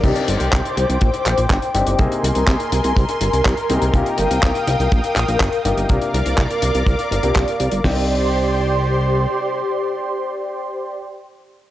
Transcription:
<<
  \new Staff \with { instrumentName = "Analog synth pad" } { \time 4/4 \key c \minor \tempo 4 = 123 << { <g'' d'''>1 | <aes'' c'''>1 | <f'' g'' ees'''>1 | <d'' f'' d'''>1 |
<g' c'' d'' c'''>1~ | <g' c'' d'' c'''>1 | } \\ { c''1 | bes'1~ | bes'1 | bes'1 |
r1 | r1 | } >> }
  \new Staff \with { instrumentName = "Grand piano" } { \time 4/4 \key c \minor <c c' d' ees' g'>2.~ <c c' d' ees' g'>8 <c c' d' ees' g'>8 | <c bes c' ees' aes'>2.~ <c bes c' ees' aes'>8 <c bes c' ees' aes'>8 | <c bes ees' f' g'>2.~ <c bes ees' f' g'>8 <c bes ees' f' g'>8 | <c bes d' f' bes'>2~ <c bes d' f' bes'>8. <c bes d' f' bes'>8 r8. |
<c' d' ees' g'>1~ | <c' d' ees' g'>1 | }
  \new Staff \with { instrumentName = "Analog synth bass" } { \clef bass \time 4/4 \key c \minor c,16 r16 g,,16 c,16 c,16 r16 c,16 c,16 bes,,16 r16 bes,,16 bes,,16 g,,16 r16 g,,16 g,,16 | c,16 r16 c,16 c,16 c,16 r16 c,16 c,16 c,16 r16 g,,16 c,16 c,16 r16 c,16 c,16 | c,16 r16 g,,16 c,16 c,16 r16 c,16 c,16 bes,,16 r16 bes,,16 bes,,16 g,,16 r16 g,,16 g,,16 | c,16 r16 c,16 c,16 c,16 r16 c,16 c,16 c,16 r16 g,,16 c,16 c,16 r16 c,16 g,,16 |
c,2. r4 | r1 | }
  \new DrumStaff \with { instrumentName = "Drums" } \drummode { \time 4/4 <cymc hh bd>16 hh16 hh16 hh16 <hc hh bd>16 hh16 hh16 hh16 <hh bd>16 hh16 <hc hh>16 hh16 <hc hh bd>16 hh16 hh16 hh16 | <hh bd>16 hh16 hh16 hh16 <hc hh bd>16 hh16 hh16 hh16 <hh bd>16 hh16 hh16 hh16 <hc hh bd>16 hh16 hh16 hh16 | <hh bd>16 hh16 hh16 hh16 <hc hh bd>16 hh16 hh16 hh16 <hh bd>16 hh16 <hc hh>16 hh16 <hc hh bd>16 hh16 hh16 hh16 | <hh bd>16 hh16 hh16 hh16 <hc hh bd>16 hh16 hh16 hh16 <hh bd>16 hh16 hh16 hh16 <hc hh bd>16 hh16 hh16 hh16 |
<hho bd sn>4 r4 r4 r4 | r4 r4 r4 r4 | }
>>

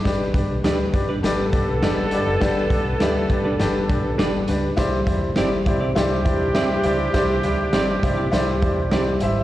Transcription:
<<
  \new Staff \with { instrumentName = "Upright piano" } { \time 4/4 \key g \major \tempo 4 = 102 << { d'''16 r2. r8. | r1 | r1 | r1 | } \\ { <d' g' b' d''>8 <d' g' b' d''>8 <d' g' b' d''>8 <d' g' b' d''>8 <d' g' b' d''>8 <d' g' b' d''>8 <d' g' b' d''>8 <d' g' b' d''>8 | <d' g' b' d''>8 <d' g' b' d''>8 <d' g' b' e''>8 <d' g' b' d''>8 <d' g' b' d''>8 <d' g' b' d''>8 <d' g' b' d''>8 <d' g' b' d''>8 | <e' g' c'' d''>8 <e' g' c'' d''>8 <e' g' c'' d''>8 <e' g' c'' d''>8 <e' g' c'' d''>8 <e' g' c'' d''>8 <e' g' c'' e''>8 <e' g' c'' d''>8 | <e' g' c'' d''>8 <e' g' c'' e''>8 <e' g' c'' d''>8 <e' g' c'' d''>8 <e' g' c'' d''>8 <e' g' c'' d''>8 <e' g' c'' d''>8 <e' g' c'' e''>8 | } >> }
  \new Staff \with { instrumentName = "Clean electric guitar" } { \time 4/4 \key g \major r4 <d' g' b' d''>16 r8 <d' g' b' d''>16 r4 <d' g' b' d''>16 r8. | r4 <d' g' b' d''>16 r8 <d' g' b' d''>16 r4 <d' g' b' d''>16 r8. | r4 <c' e' g' d''>16 r8 <c' e' g' d''>16 r4 <c' e' g' d''>16 r8. | r4 <c' e' g' d''>16 r8 <c' e' g' d''>16 r4 <c' e' g' d''>16 r8. | }
  \new Staff \with { instrumentName = "Horn section" } { \time 4/4 \key g \major r2 <d b a'>2~ | <d b a'>2.~ <d b a'>8 r8 | r2 <e d' g'>2~ | <e d' g'>2.~ <e d' g'>8 r8 | }
  \new Staff \with { instrumentName = "Fingered electric bass" } { \clef bass \time 4/4 \key g \major g,,8 b,,8 d,8 g,8 g,,8 b,,8 g,,8. fis,,16 | r8 b,,8 d,8 g,8 g,,8 b,,8 g,,8 cis,8 | c,8 e,8 g,,8 c8 c,8 e,8 c,8 cis,8 | c,8 d,8 g,,8 c8 c,8 e,8 c,8 aes,,8 | }
  \new DrumStaff \with { instrumentName = "Drums" } \drummode { \time 4/4 <hh bd sn>8 <hh bd>8 <hh sn>8 <hh bd>8 <hh sn>8 <hh bd>8 <hh sn>8 hh8 | <hh bd sn>8 <hh bd>8 <hh sn>8 <hh bd>8 <hh sn>8 <hh bd>8 <hh sn>8 hh8 | <hh bd sn>8 <hh bd>8 <hh sn>8 <hh bd>8 <hh sn>8 <hh bd>8 <hh sn>8 hh8 | <hh bd sn>8 hh8 <hh sn>8 <hh bd>8 <hh sn>8 <hh bd>8 <hh sn>8 hh8 | }
>>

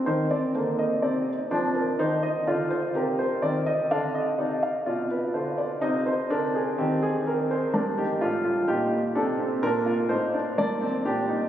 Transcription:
<<
  \new Staff \with { instrumentName = "Grand piano" } { \time 4/4 \key c \minor \tempo 4 = 63 << { c''16 d''16 c''16 ees''16 d''8 c''16 bes'16 c''16 ees''16 d''16 c''16 bes'16 c''16 d''16 ees''16 | f''16 ees''16 d''16 f''16 d''16 b'16 c''16 d''16 ees''16 c''16 bes'16 aes'16 g'16 aes'16 bes'16 c''16 | bes'16 g'16 f'8 g'8 a'8 bes'8 c''8 d''8 g'8 | } \\ { c'16 c'16 bes8 c'8 d'8 ees'8 f'8 g'8 c'8 | d'8 ees'8 f'4 ees'8 d'8 c'4 | d'16 ees'16 d'16 f'16 ees'8 d'16 c'16 d'16 f'16 ees'16 d'16 bes16 c'16 d'16 ees'16 | } >> }
  \new Staff \with { instrumentName = "Grand piano" } { \clef bass \time 4/4 \key c \minor ees8 d8 c8 f8 ees8 d8 c8 ees8 | d8 c8 b,8 d8 c8 d8 ees4 | g,8 a,8 bes,8 c8 bes,8 a,8 g,8 bes,8 | }
>>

